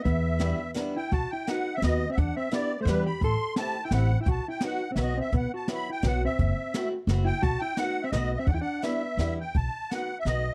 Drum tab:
HH |x-x-x-|x-x-x-|x-x-x-|x-x-x-|
SD |--o-o-|--o-o-|--o-o-|--o-o-|
BD |o-----|o-----|o-----|o-----|

HH |x-x-x-|x-x---|x-x-x-|x-x-x-|
SD |--o-o-|--o-o-|--o-o-|--o-o-|
BD |o-----|o-----|o-----|o-----|

HH |x-x-x-|x-x-x-|
SD |--o-o-|--o-o-|
BD |o-----|o-----|